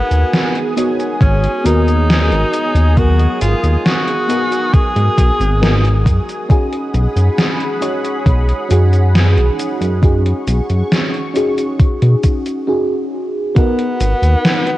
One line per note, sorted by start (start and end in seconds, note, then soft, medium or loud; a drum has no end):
0.00 0.71 B3 medium
0.00 0.73 B3 loud
0.00 0.71 D#4 medium
0.00 0.72 F#4 medium
0.00 6.47 G#4 medium
0.00 0.72 A#4 loud
0.00 6.47 G#5 medium
0.00 12.65 D#6 medium
0.11 0.24 D#2 medium
0.11 closed hi-hat soft
0.11 cabasa soft
0.33 snare loud
0.33 closed hi-hat medium
0.33 cabasa soft
0.55 closed hi-hat soft
0.76 1.59 B3 medium
0.76 1.60 D#4 medium
0.76 1.60 F#4 medium
0.76 1.60 C#5 medium
0.76 closed hi-hat medium
0.76 cabasa medium
1.00 closed hi-hat soft
1.00 cabasa soft
1.21 1.48 G#1 medium
1.21 1.67 C#4 medium
1.21 kick loud
1.21 closed hi-hat medium
1.21 cabasa soft
1.44 closed hi-hat soft
1.64 2.33 D#2 medium
1.64 2.91 B3 medium
1.64 2.92 D#4 medium
1.64 2.99 D#4 loud
1.64 2.92 F#4 medium
1.64 2.93 A#4 loud
1.64 closed hi-hat medium
1.64 cabasa medium
1.88 closed hi-hat soft
1.88 cabasa soft
2.10 snare loud
2.10 closed hi-hat medium
2.10 cabasa soft
2.31 2.44 G#1 medium
2.31 closed hi-hat soft
2.54 closed hi-hat medium
2.54 cabasa medium
2.75 3.27 D#2 loud
2.75 closed hi-hat soft
2.75 cabasa soft
2.96 4.25 F#3 medium
2.96 4.24 B3 medium
2.96 4.24 D#4 medium
2.96 3.41 F#4 loud
2.96 4.25 A#4 medium
2.96 kick loud
2.96 closed hi-hat medium
2.96 cabasa soft
3.20 closed hi-hat soft
3.41 3.55 G#1 loud
3.41 3.87 F4 loud
3.41 closed hi-hat medium
3.41 cabasa medium
3.63 3.77 D#2 medium
3.63 closed hi-hat soft
3.63 cabasa soft
3.86 4.75 F#4 loud
3.86 snare loud
3.86 closed hi-hat medium
3.86 cabasa soft
4.08 closed hi-hat soft
4.28 5.56 B3 medium
4.28 5.56 D#4 medium
4.28 5.57 F#4 medium
4.28 5.57 A#4 medium
4.28 closed hi-hat medium
4.28 cabasa medium
4.52 closed hi-hat soft
4.52 cabasa soft
4.74 6.06 G#4 loud
4.74 kick loud
4.74 closed hi-hat medium
4.74 cabasa soft
4.96 5.09 G#2 medium
4.96 closed hi-hat soft
5.18 5.31 B1 medium
5.18 kick medium
5.18 closed hi-hat medium
5.18 cabasa medium
5.40 6.08 G#1 medium
5.40 closed hi-hat soft
5.40 cabasa soft
5.61 6.45 B3 medium
5.61 6.45 D#4 medium
5.61 6.45 F#4 medium
5.61 6.45 A#4 medium
5.61 snare loud
5.61 closed hi-hat medium
5.61 cabasa soft
5.85 closed hi-hat soft
6.06 6.19 F#2 medium
6.06 kick loud
6.06 closed hi-hat medium
6.06 cabasa medium
6.29 closed hi-hat soft
6.29 cabasa soft
6.49 7.77 C#4 medium
6.49 7.77 D#4 medium
6.49 7.78 F#4 medium
6.49 12.63 G#4 medium
6.49 7.78 G#4 loud
6.49 12.63 F#5 medium
6.49 9.99 B5 medium
6.49 kick loud
6.49 closed hi-hat medium
6.49 cabasa soft
6.73 closed hi-hat soft
6.94 7.08 B1 loud
6.94 closed hi-hat medium
6.94 cabasa medium
7.16 7.30 F#2 medium
7.16 closed hi-hat soft
7.16 cabasa soft
7.38 snare loud
7.38 closed hi-hat medium
7.38 cabasa soft
7.61 closed hi-hat soft
7.81 8.65 C#4 medium
7.81 8.65 D#4 medium
7.81 8.65 F#4 medium
7.81 8.66 C#5 medium
7.81 closed hi-hat medium
7.81 cabasa medium
8.05 closed hi-hat soft
8.05 cabasa soft
8.26 8.53 B1 loud
8.26 kick loud
8.26 closed hi-hat medium
8.26 cabasa soft
8.49 closed hi-hat soft
8.69 9.39 F#2 medium
8.69 9.97 C#4 medium
8.69 9.98 D#4 medium
8.69 9.98 F#4 medium
8.69 9.99 G#4 loud
8.69 closed hi-hat medium
8.69 cabasa medium
8.93 closed hi-hat soft
8.93 cabasa soft
9.15 snare loud
9.15 closed hi-hat medium
9.15 cabasa soft
9.37 9.50 B1 medium
9.37 closed hi-hat soft
9.60 closed hi-hat medium
9.60 cabasa medium
9.81 10.33 F#2 loud
9.81 closed hi-hat soft
9.81 cabasa soft
10.01 11.29 C#4 medium
10.01 11.30 D#4 medium
10.01 11.30 F#4 medium
10.01 11.31 G#4 medium
10.01 12.65 C#6 medium
10.01 kick loud
10.01 closed hi-hat medium
10.01 cabasa soft
10.26 closed hi-hat soft
10.47 10.61 B1 loud
10.47 closed hi-hat medium
10.47 cabasa medium
10.69 10.83 F#2 medium
10.69 closed hi-hat soft
10.69 cabasa soft
10.92 snare loud
10.92 closed hi-hat medium
10.92 cabasa soft
11.14 closed hi-hat soft
11.33 12.62 C#4 medium
11.33 12.62 D#4 medium
11.33 12.63 F#4 medium
11.33 12.63 G#4 medium
11.33 closed hi-hat medium
11.33 cabasa medium
11.58 closed hi-hat soft
11.58 cabasa soft
11.79 kick loud
11.79 closed hi-hat medium
11.79 cabasa soft
12.02 12.15 B2 medium
12.02 closed hi-hat soft
12.23 kick medium
12.23 closed hi-hat medium
12.23 cabasa medium
12.46 closed hi-hat soft
12.46 cabasa soft
12.67 13.50 C#4 medium
12.67 13.51 D#4 medium
12.67 13.51 F#4 medium
12.67 13.51 G#4 medium
13.55 14.78 B3 loud
13.55 14.78 D#4 medium
13.55 14.78 F#4 medium
13.55 14.78 A#4 loud
13.55 kick loud
13.55 closed hi-hat medium
13.55 cabasa soft
13.78 closed hi-hat soft
14.00 14.14 G#1 loud
14.00 closed hi-hat loud
14.00 cabasa medium
14.22 14.35 D#2 medium
14.22 closed hi-hat soft
14.22 cabasa soft
14.45 snare loud
14.45 closed hi-hat medium
14.45 cabasa soft
14.67 closed hi-hat soft